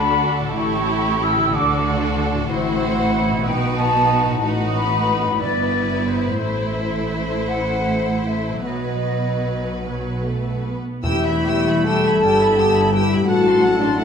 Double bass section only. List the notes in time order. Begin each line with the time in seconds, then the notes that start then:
Already playing: D2
0.57 A1
1.53 D2
2.51 A1
3.46 B1
4.43 A1
5.41 G1
6.42 A1
8.66 B1
11.03 E1
12.23 G1
13.27 A1